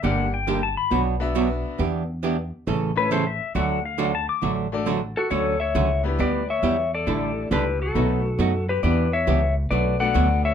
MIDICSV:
0, 0, Header, 1, 6, 480
1, 0, Start_track
1, 0, Key_signature, 2, "major"
1, 0, Tempo, 439883
1, 39, Time_signature, 4, 2, 24, 8
1, 11503, End_track
2, 0, Start_track
2, 0, Title_t, "Pedal steel guitar"
2, 0, Program_c, 0, 26
2, 45, Note_on_c, 0, 78, 89
2, 353, Note_off_c, 0, 78, 0
2, 368, Note_on_c, 0, 79, 89
2, 674, Note_off_c, 0, 79, 0
2, 688, Note_on_c, 0, 81, 87
2, 839, Note_off_c, 0, 81, 0
2, 845, Note_on_c, 0, 83, 114
2, 1103, Note_off_c, 0, 83, 0
2, 3246, Note_on_c, 0, 71, 106
2, 3397, Note_off_c, 0, 71, 0
2, 3405, Note_on_c, 0, 72, 89
2, 3557, Note_off_c, 0, 72, 0
2, 3566, Note_on_c, 0, 76, 89
2, 3873, Note_off_c, 0, 76, 0
2, 3881, Note_on_c, 0, 78, 93
2, 4190, Note_off_c, 0, 78, 0
2, 4206, Note_on_c, 0, 77, 98
2, 4513, Note_off_c, 0, 77, 0
2, 4526, Note_on_c, 0, 81, 79
2, 4678, Note_off_c, 0, 81, 0
2, 4682, Note_on_c, 0, 86, 110
2, 4941, Note_off_c, 0, 86, 0
2, 11503, End_track
3, 0, Start_track
3, 0, Title_t, "Electric slide guitar"
3, 0, Program_c, 1, 29
3, 5645, Note_on_c, 1, 69, 77
3, 5658, Note_on_c, 1, 66, 62
3, 5790, Note_off_c, 1, 69, 0
3, 5792, Note_on_c, 1, 73, 94
3, 5795, Note_off_c, 1, 66, 0
3, 5803, Note_on_c, 1, 69, 77
3, 6105, Note_off_c, 1, 69, 0
3, 6109, Note_on_c, 1, 76, 94
3, 6111, Note_off_c, 1, 73, 0
3, 6125, Note_on_c, 1, 73, 81
3, 6563, Note_off_c, 1, 76, 0
3, 6572, Note_off_c, 1, 73, 0
3, 6769, Note_on_c, 1, 71, 74
3, 6770, Note_on_c, 1, 74, 96
3, 7068, Note_off_c, 1, 71, 0
3, 7094, Note_on_c, 1, 76, 97
3, 7095, Note_off_c, 1, 74, 0
3, 7100, Note_on_c, 1, 73, 74
3, 7537, Note_off_c, 1, 76, 0
3, 7540, Note_off_c, 1, 73, 0
3, 7579, Note_on_c, 1, 74, 95
3, 7584, Note_on_c, 1, 69, 74
3, 8162, Note_off_c, 1, 74, 0
3, 8164, Note_off_c, 1, 69, 0
3, 8211, Note_on_c, 1, 71, 97
3, 8217, Note_on_c, 1, 67, 71
3, 8509, Note_off_c, 1, 71, 0
3, 8513, Note_off_c, 1, 67, 0
3, 8531, Note_on_c, 1, 69, 87
3, 8538, Note_on_c, 1, 66, 68
3, 9447, Note_off_c, 1, 66, 0
3, 9481, Note_off_c, 1, 69, 0
3, 9486, Note_on_c, 1, 71, 82
3, 9495, Note_on_c, 1, 67, 64
3, 9628, Note_off_c, 1, 71, 0
3, 9633, Note_off_c, 1, 67, 0
3, 9636, Note_on_c, 1, 74, 93
3, 9647, Note_on_c, 1, 71, 75
3, 9947, Note_off_c, 1, 71, 0
3, 9966, Note_on_c, 1, 76, 97
3, 9967, Note_off_c, 1, 74, 0
3, 9972, Note_on_c, 1, 73, 71
3, 10411, Note_off_c, 1, 76, 0
3, 10414, Note_off_c, 1, 73, 0
3, 10591, Note_on_c, 1, 71, 80
3, 10591, Note_on_c, 1, 74, 90
3, 10895, Note_off_c, 1, 74, 0
3, 10897, Note_off_c, 1, 71, 0
3, 10913, Note_on_c, 1, 78, 93
3, 10919, Note_on_c, 1, 74, 75
3, 11363, Note_off_c, 1, 78, 0
3, 11366, Note_off_c, 1, 74, 0
3, 11403, Note_on_c, 1, 76, 104
3, 11409, Note_on_c, 1, 73, 73
3, 11503, Note_off_c, 1, 73, 0
3, 11503, Note_off_c, 1, 76, 0
3, 11503, End_track
4, 0, Start_track
4, 0, Title_t, "Upright piano"
4, 0, Program_c, 2, 0
4, 24, Note_on_c, 2, 58, 63
4, 28, Note_on_c, 2, 62, 52
4, 35, Note_on_c, 2, 67, 57
4, 42, Note_on_c, 2, 70, 54
4, 44, Note_on_c, 2, 74, 67
4, 326, Note_off_c, 2, 58, 0
4, 328, Note_off_c, 2, 62, 0
4, 331, Note_off_c, 2, 67, 0
4, 334, Note_off_c, 2, 70, 0
4, 336, Note_off_c, 2, 74, 0
4, 1309, Note_on_c, 2, 59, 84
4, 1311, Note_on_c, 2, 62, 76
4, 1316, Note_on_c, 2, 66, 82
4, 1322, Note_on_c, 2, 71, 74
4, 1325, Note_on_c, 2, 76, 94
4, 1919, Note_off_c, 2, 59, 0
4, 1921, Note_off_c, 2, 62, 0
4, 1923, Note_off_c, 2, 66, 0
4, 1926, Note_off_c, 2, 71, 0
4, 1927, Note_off_c, 2, 76, 0
4, 3225, Note_on_c, 2, 57, 79
4, 3230, Note_on_c, 2, 61, 76
4, 3235, Note_on_c, 2, 64, 67
4, 3244, Note_on_c, 2, 69, 66
4, 3248, Note_on_c, 2, 73, 83
4, 3373, Note_off_c, 2, 57, 0
4, 3376, Note_off_c, 2, 61, 0
4, 3378, Note_off_c, 2, 64, 0
4, 3382, Note_off_c, 2, 69, 0
4, 3384, Note_off_c, 2, 73, 0
4, 5152, Note_on_c, 2, 57, 79
4, 5159, Note_on_c, 2, 62, 74
4, 5160, Note_on_c, 2, 66, 75
4, 5170, Note_on_c, 2, 69, 71
4, 5172, Note_on_c, 2, 74, 85
4, 5297, Note_off_c, 2, 57, 0
4, 5300, Note_off_c, 2, 62, 0
4, 5301, Note_off_c, 2, 66, 0
4, 5306, Note_off_c, 2, 69, 0
4, 5307, Note_off_c, 2, 74, 0
4, 6586, Note_on_c, 2, 59, 80
4, 6596, Note_on_c, 2, 62, 66
4, 6598, Note_on_c, 2, 64, 71
4, 6605, Note_on_c, 2, 67, 72
4, 6611, Note_on_c, 2, 71, 82
4, 6734, Note_off_c, 2, 59, 0
4, 6739, Note_off_c, 2, 62, 0
4, 6740, Note_off_c, 2, 64, 0
4, 6743, Note_off_c, 2, 67, 0
4, 6746, Note_off_c, 2, 71, 0
4, 7706, Note_on_c, 2, 57, 58
4, 7709, Note_on_c, 2, 62, 55
4, 7719, Note_on_c, 2, 64, 56
4, 7724, Note_on_c, 2, 67, 54
4, 7727, Note_on_c, 2, 69, 65
4, 8454, Note_off_c, 2, 57, 0
4, 8456, Note_off_c, 2, 62, 0
4, 8460, Note_off_c, 2, 64, 0
4, 8463, Note_off_c, 2, 67, 0
4, 8464, Note_off_c, 2, 69, 0
4, 8667, Note_on_c, 2, 57, 65
4, 8671, Note_on_c, 2, 59, 60
4, 8675, Note_on_c, 2, 63, 57
4, 8681, Note_on_c, 2, 66, 54
4, 8688, Note_on_c, 2, 71, 68
4, 8967, Note_off_c, 2, 57, 0
4, 8969, Note_off_c, 2, 59, 0
4, 8971, Note_off_c, 2, 63, 0
4, 8974, Note_off_c, 2, 66, 0
4, 8977, Note_off_c, 2, 71, 0
4, 10908, Note_on_c, 2, 57, 82
4, 10914, Note_on_c, 2, 59, 77
4, 10918, Note_on_c, 2, 62, 74
4, 10926, Note_on_c, 2, 66, 80
4, 10927, Note_on_c, 2, 69, 87
4, 11503, Note_off_c, 2, 57, 0
4, 11503, Note_off_c, 2, 59, 0
4, 11503, Note_off_c, 2, 62, 0
4, 11503, Note_off_c, 2, 66, 0
4, 11503, Note_off_c, 2, 69, 0
4, 11503, End_track
5, 0, Start_track
5, 0, Title_t, "Hollow-body jazz guitar"
5, 0, Program_c, 3, 26
5, 33, Note_on_c, 3, 50, 59
5, 38, Note_on_c, 3, 55, 57
5, 42, Note_on_c, 3, 58, 66
5, 43, Note_on_c, 3, 62, 64
5, 44, Note_on_c, 3, 67, 66
5, 290, Note_off_c, 3, 50, 0
5, 292, Note_off_c, 3, 55, 0
5, 294, Note_off_c, 3, 58, 0
5, 295, Note_off_c, 3, 62, 0
5, 295, Note_off_c, 3, 67, 0
5, 515, Note_on_c, 3, 50, 75
5, 518, Note_on_c, 3, 55, 80
5, 521, Note_on_c, 3, 58, 77
5, 526, Note_on_c, 3, 62, 78
5, 527, Note_on_c, 3, 67, 79
5, 651, Note_off_c, 3, 50, 0
5, 653, Note_off_c, 3, 55, 0
5, 654, Note_off_c, 3, 58, 0
5, 657, Note_off_c, 3, 62, 0
5, 657, Note_off_c, 3, 67, 0
5, 989, Note_on_c, 3, 47, 55
5, 995, Note_on_c, 3, 59, 60
5, 996, Note_on_c, 3, 54, 58
5, 1002, Note_on_c, 3, 62, 63
5, 1005, Note_on_c, 3, 66, 73
5, 1248, Note_off_c, 3, 47, 0
5, 1251, Note_off_c, 3, 54, 0
5, 1251, Note_off_c, 3, 59, 0
5, 1254, Note_off_c, 3, 62, 0
5, 1255, Note_off_c, 3, 66, 0
5, 1472, Note_on_c, 3, 47, 71
5, 1474, Note_on_c, 3, 54, 76
5, 1478, Note_on_c, 3, 59, 86
5, 1481, Note_on_c, 3, 62, 83
5, 1483, Note_on_c, 3, 66, 85
5, 1610, Note_off_c, 3, 47, 0
5, 1610, Note_off_c, 3, 54, 0
5, 1612, Note_off_c, 3, 59, 0
5, 1614, Note_off_c, 3, 62, 0
5, 1615, Note_off_c, 3, 66, 0
5, 1948, Note_on_c, 3, 52, 59
5, 1954, Note_on_c, 3, 59, 63
5, 1959, Note_on_c, 3, 62, 68
5, 1960, Note_on_c, 3, 67, 61
5, 2207, Note_off_c, 3, 52, 0
5, 2210, Note_off_c, 3, 59, 0
5, 2212, Note_off_c, 3, 62, 0
5, 2213, Note_off_c, 3, 67, 0
5, 2432, Note_on_c, 3, 52, 74
5, 2435, Note_on_c, 3, 59, 73
5, 2438, Note_on_c, 3, 62, 75
5, 2444, Note_on_c, 3, 67, 86
5, 2569, Note_off_c, 3, 52, 0
5, 2571, Note_off_c, 3, 59, 0
5, 2573, Note_off_c, 3, 62, 0
5, 2575, Note_off_c, 3, 67, 0
5, 2914, Note_on_c, 3, 49, 59
5, 2916, Note_on_c, 3, 52, 57
5, 2920, Note_on_c, 3, 57, 61
5, 2923, Note_on_c, 3, 61, 62
5, 2925, Note_on_c, 3, 69, 61
5, 3170, Note_off_c, 3, 49, 0
5, 3171, Note_off_c, 3, 52, 0
5, 3173, Note_off_c, 3, 57, 0
5, 3175, Note_off_c, 3, 61, 0
5, 3175, Note_off_c, 3, 69, 0
5, 3392, Note_on_c, 3, 49, 80
5, 3393, Note_on_c, 3, 52, 77
5, 3400, Note_on_c, 3, 57, 84
5, 3400, Note_on_c, 3, 61, 83
5, 3404, Note_on_c, 3, 69, 84
5, 3530, Note_off_c, 3, 49, 0
5, 3530, Note_off_c, 3, 52, 0
5, 3533, Note_off_c, 3, 61, 0
5, 3534, Note_off_c, 3, 57, 0
5, 3536, Note_off_c, 3, 69, 0
5, 3872, Note_on_c, 3, 50, 64
5, 3874, Note_on_c, 3, 54, 64
5, 3879, Note_on_c, 3, 57, 67
5, 3882, Note_on_c, 3, 62, 65
5, 3886, Note_on_c, 3, 66, 70
5, 4129, Note_off_c, 3, 50, 0
5, 4130, Note_off_c, 3, 54, 0
5, 4132, Note_off_c, 3, 57, 0
5, 4134, Note_off_c, 3, 62, 0
5, 4136, Note_off_c, 3, 66, 0
5, 4341, Note_on_c, 3, 50, 78
5, 4346, Note_on_c, 3, 54, 78
5, 4349, Note_on_c, 3, 57, 84
5, 4352, Note_on_c, 3, 62, 89
5, 4353, Note_on_c, 3, 66, 85
5, 4484, Note_off_c, 3, 50, 0
5, 4487, Note_off_c, 3, 54, 0
5, 4488, Note_off_c, 3, 57, 0
5, 4490, Note_off_c, 3, 62, 0
5, 4490, Note_off_c, 3, 66, 0
5, 4820, Note_on_c, 3, 50, 60
5, 4827, Note_on_c, 3, 54, 63
5, 4828, Note_on_c, 3, 57, 64
5, 4832, Note_on_c, 3, 62, 71
5, 4835, Note_on_c, 3, 66, 62
5, 5083, Note_off_c, 3, 50, 0
5, 5087, Note_off_c, 3, 54, 0
5, 5087, Note_off_c, 3, 57, 0
5, 5089, Note_off_c, 3, 62, 0
5, 5091, Note_off_c, 3, 66, 0
5, 5301, Note_on_c, 3, 50, 72
5, 5307, Note_on_c, 3, 54, 71
5, 5309, Note_on_c, 3, 57, 74
5, 5315, Note_on_c, 3, 62, 80
5, 5316, Note_on_c, 3, 66, 78
5, 5444, Note_off_c, 3, 50, 0
5, 5447, Note_off_c, 3, 54, 0
5, 5448, Note_off_c, 3, 57, 0
5, 5451, Note_off_c, 3, 62, 0
5, 5452, Note_off_c, 3, 66, 0
5, 5788, Note_on_c, 3, 50, 56
5, 5790, Note_on_c, 3, 54, 57
5, 5794, Note_on_c, 3, 57, 60
5, 5798, Note_on_c, 3, 61, 61
5, 5799, Note_on_c, 3, 66, 62
5, 6047, Note_off_c, 3, 50, 0
5, 6048, Note_off_c, 3, 54, 0
5, 6050, Note_off_c, 3, 57, 0
5, 6052, Note_off_c, 3, 61, 0
5, 6053, Note_off_c, 3, 66, 0
5, 6272, Note_on_c, 3, 50, 69
5, 6278, Note_on_c, 3, 54, 76
5, 6281, Note_on_c, 3, 57, 73
5, 6283, Note_on_c, 3, 61, 84
5, 6285, Note_on_c, 3, 66, 74
5, 6410, Note_off_c, 3, 50, 0
5, 6413, Note_off_c, 3, 54, 0
5, 6414, Note_off_c, 3, 57, 0
5, 6415, Note_off_c, 3, 61, 0
5, 6416, Note_off_c, 3, 66, 0
5, 6751, Note_on_c, 3, 55, 59
5, 6754, Note_on_c, 3, 59, 63
5, 6759, Note_on_c, 3, 64, 60
5, 6763, Note_on_c, 3, 67, 60
5, 7009, Note_off_c, 3, 55, 0
5, 7010, Note_off_c, 3, 59, 0
5, 7013, Note_off_c, 3, 64, 0
5, 7015, Note_off_c, 3, 67, 0
5, 7231, Note_on_c, 3, 55, 76
5, 7237, Note_on_c, 3, 59, 68
5, 7239, Note_on_c, 3, 64, 76
5, 7243, Note_on_c, 3, 67, 79
5, 7369, Note_off_c, 3, 55, 0
5, 7373, Note_off_c, 3, 59, 0
5, 7373, Note_off_c, 3, 64, 0
5, 7376, Note_off_c, 3, 67, 0
5, 7710, Note_on_c, 3, 50, 58
5, 7715, Note_on_c, 3, 55, 55
5, 7717, Note_on_c, 3, 62, 62
5, 7723, Note_on_c, 3, 64, 67
5, 7724, Note_on_c, 3, 69, 65
5, 7968, Note_off_c, 3, 50, 0
5, 7971, Note_off_c, 3, 55, 0
5, 7972, Note_off_c, 3, 62, 0
5, 7975, Note_off_c, 3, 64, 0
5, 7975, Note_off_c, 3, 69, 0
5, 8196, Note_on_c, 3, 50, 72
5, 8199, Note_on_c, 3, 55, 74
5, 8203, Note_on_c, 3, 62, 74
5, 8208, Note_on_c, 3, 64, 72
5, 8208, Note_on_c, 3, 69, 84
5, 8332, Note_off_c, 3, 50, 0
5, 8333, Note_off_c, 3, 55, 0
5, 8335, Note_off_c, 3, 62, 0
5, 8338, Note_off_c, 3, 64, 0
5, 8338, Note_off_c, 3, 69, 0
5, 8678, Note_on_c, 3, 47, 61
5, 8683, Note_on_c, 3, 54, 61
5, 8686, Note_on_c, 3, 57, 67
5, 8688, Note_on_c, 3, 63, 56
5, 8691, Note_on_c, 3, 66, 60
5, 8932, Note_off_c, 3, 47, 0
5, 8934, Note_off_c, 3, 54, 0
5, 8936, Note_off_c, 3, 57, 0
5, 8937, Note_off_c, 3, 63, 0
5, 8938, Note_off_c, 3, 66, 0
5, 9153, Note_on_c, 3, 47, 66
5, 9157, Note_on_c, 3, 54, 70
5, 9159, Note_on_c, 3, 57, 73
5, 9163, Note_on_c, 3, 63, 78
5, 9165, Note_on_c, 3, 66, 73
5, 9290, Note_off_c, 3, 47, 0
5, 9292, Note_off_c, 3, 54, 0
5, 9293, Note_off_c, 3, 57, 0
5, 9295, Note_off_c, 3, 63, 0
5, 9296, Note_off_c, 3, 66, 0
5, 9635, Note_on_c, 3, 52, 64
5, 9641, Note_on_c, 3, 59, 60
5, 9645, Note_on_c, 3, 62, 60
5, 9650, Note_on_c, 3, 67, 70
5, 9890, Note_off_c, 3, 52, 0
5, 9893, Note_off_c, 3, 59, 0
5, 9895, Note_off_c, 3, 62, 0
5, 9898, Note_off_c, 3, 67, 0
5, 10116, Note_on_c, 3, 52, 72
5, 10118, Note_on_c, 3, 59, 72
5, 10124, Note_on_c, 3, 62, 74
5, 10126, Note_on_c, 3, 67, 86
5, 10251, Note_off_c, 3, 52, 0
5, 10252, Note_off_c, 3, 59, 0
5, 10255, Note_off_c, 3, 62, 0
5, 10256, Note_off_c, 3, 67, 0
5, 10597, Note_on_c, 3, 47, 54
5, 10600, Note_on_c, 3, 54, 59
5, 10602, Note_on_c, 3, 57, 56
5, 10606, Note_on_c, 3, 62, 60
5, 10610, Note_on_c, 3, 66, 67
5, 10850, Note_off_c, 3, 47, 0
5, 10852, Note_off_c, 3, 54, 0
5, 10852, Note_off_c, 3, 57, 0
5, 10854, Note_off_c, 3, 62, 0
5, 10857, Note_off_c, 3, 66, 0
5, 11068, Note_on_c, 3, 47, 79
5, 11070, Note_on_c, 3, 54, 75
5, 11074, Note_on_c, 3, 57, 73
5, 11077, Note_on_c, 3, 62, 78
5, 11079, Note_on_c, 3, 66, 83
5, 11206, Note_off_c, 3, 47, 0
5, 11207, Note_off_c, 3, 54, 0
5, 11209, Note_off_c, 3, 57, 0
5, 11211, Note_off_c, 3, 62, 0
5, 11211, Note_off_c, 3, 66, 0
5, 11503, End_track
6, 0, Start_track
6, 0, Title_t, "Upright bass"
6, 0, Program_c, 4, 32
6, 40, Note_on_c, 4, 31, 88
6, 807, Note_off_c, 4, 31, 0
6, 997, Note_on_c, 4, 35, 84
6, 1765, Note_off_c, 4, 35, 0
6, 1956, Note_on_c, 4, 40, 84
6, 2725, Note_off_c, 4, 40, 0
6, 2917, Note_on_c, 4, 33, 90
6, 3686, Note_off_c, 4, 33, 0
6, 3875, Note_on_c, 4, 38, 88
6, 4644, Note_off_c, 4, 38, 0
6, 4832, Note_on_c, 4, 33, 80
6, 5603, Note_off_c, 4, 33, 0
6, 5796, Note_on_c, 4, 38, 80
6, 6263, Note_off_c, 4, 38, 0
6, 6273, Note_on_c, 4, 37, 95
6, 6742, Note_off_c, 4, 37, 0
6, 6761, Note_on_c, 4, 38, 83
6, 7226, Note_off_c, 4, 38, 0
6, 7233, Note_on_c, 4, 40, 84
6, 7702, Note_off_c, 4, 40, 0
6, 7716, Note_on_c, 4, 33, 80
6, 8183, Note_off_c, 4, 33, 0
6, 8194, Note_on_c, 4, 37, 91
6, 8662, Note_off_c, 4, 37, 0
6, 8678, Note_on_c, 4, 35, 86
6, 9144, Note_off_c, 4, 35, 0
6, 9151, Note_on_c, 4, 42, 89
6, 9620, Note_off_c, 4, 42, 0
6, 9642, Note_on_c, 4, 40, 84
6, 10105, Note_off_c, 4, 40, 0
6, 10118, Note_on_c, 4, 37, 92
6, 10583, Note_off_c, 4, 37, 0
6, 10594, Note_on_c, 4, 35, 78
6, 11060, Note_off_c, 4, 35, 0
6, 11077, Note_on_c, 4, 38, 97
6, 11503, Note_off_c, 4, 38, 0
6, 11503, End_track
0, 0, End_of_file